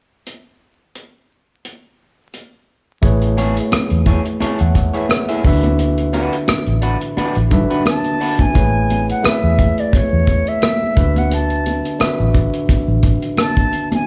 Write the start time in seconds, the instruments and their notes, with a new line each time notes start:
0.27 closed hi-hat
0.96 closed hi-hat
1.65 closed hi-hat
2.34 closed hi-hat
3.02 fingered electric bass A1, tine electric piano A3 E4 G#4 B4 C#5, kick, closed hi-hat
3.22 closed hi-hat
3.37 clean electric guitar E4 G#4 C#5, closed hi-hat, muted conga
3.57 closed hi-hat
3.72 muted clean electric guitar stroke, muted fingered electric bass stroke, cross-stick, closed hi-hat, high conga
3.90 fingered electric bass E2, closed hi-hat
4.06 clean electric guitar E4 G#4 C#5, kick, closed hi-hat
4.25 muted clean electric guitar stroke, closed hi-hat
4.40 clean electric guitar E4 G#4 C#5, tine electric piano E5 A5, muted fingered electric bass stroke, closed hi-hat, muted conga
4.59 fingered electric bass E2, tine electric piano C#5 F#5, closed hi-hat
4.75 muted clean electric guitar stroke, kick, cross-stick, closed hi-hat
4.94 clean electric guitar E4 G#4 C#5, tine electric piano B4 E5, closed hi-hat
5.09 tine electric piano G#4 C#5, cross-stick, closed hi-hat, high conga
5.29 clean electric guitar E4 G#4 E5, tine electric piano E4 A4, closed hi-hat
5.44 fingered electric bass D2, tine electric piano D3 D4 F#4 B4 E5, muted clean electric guitar stroke, kick, open hi-hat
5.63 muted clean electric guitar stroke, closed hi-hat, high conga
5.79 closed hi-hat
5.98 closed hi-hat
6.13 clean electric guitar D4 F#4 B4, closed hi-hat, muted conga
6.33 closed hi-hat
6.48 muted clean electric guitar stroke, muted fingered electric bass stroke, cross-stick, closed hi-hat, high conga
6.67 fingered electric bass A1, closed hi-hat
6.82 clean electric guitar D4 F#4 B4, closed hi-hat
7.01 muted clean electric guitar stroke, closed hi-hat
7.17 clean electric guitar D4 F#4 B4, muted fingered electric bass stroke, closed hi-hat, muted conga
7.35 fingered electric bass A1, closed hi-hat
7.50 tine electric piano D3 D4 F#4 B4 E5, muted clean electric guitar stroke, kick, cross-stick, closed hi-hat, low conga
7.70 clean electric guitar D4 F#4 B4, closed hi-hat
7.86 flute A5, cross-stick, closed hi-hat, high conga
8.04 closed hi-hat
8.20 clean electric guitar D4 F#4 B4, open hi-hat
8.39 flute G#5, muted clean electric guitar stroke, kick, closed hi-hat, high conga
8.54 fingered electric bass A1, tine electric piano A3 E4 G#4 B4 C#5, kick, closed hi-hat
8.90 closed hi-hat, muted conga
9.09 flute F#5, closed hi-hat
9.22 tine electric piano A3 E4 G#4 B4 E5, muted fingered electric bass stroke, cross-stick, closed hi-hat, high conga
9.27 flute E5
9.44 fingered electric bass E2
9.59 kick, closed hi-hat
9.78 flute D5, closed hi-hat
9.93 flute C#5, muted fingered electric bass stroke, kick, closed hi-hat, muted conga
10.13 fingered electric bass E2
10.27 kick, closed hi-hat, muted conga
10.47 flute E5, closed hi-hat
10.62 cross-stick, closed hi-hat, high conga
10.83 high conga
10.95 fingered electric bass D2, tine electric piano D3 D4 F#4 B4 E5, kick, closed hi-hat
11.16 flute F#5, closed hi-hat, high conga
11.31 flute A5, closed hi-hat
11.50 closed hi-hat
11.66 closed hi-hat, muted conga
11.85 closed hi-hat
11.99 tine electric piano D3 D4 F#4 B4 E5, muted fingered electric bass stroke, cross-stick, closed hi-hat, high conga
12.20 fingered electric bass A1
12.34 kick, closed hi-hat
12.54 closed hi-hat
12.69 muted fingered electric bass stroke, kick, closed hi-hat, muted conga
12.88 fingered electric bass A1
13.03 kick, closed hi-hat, muted conga
13.22 closed hi-hat
13.37 flute A5, cross-stick, closed hi-hat, high conga
13.56 kick, closed hi-hat, high conga
13.73 closed hi-hat
13.92 flute G#5, closed hi-hat, high conga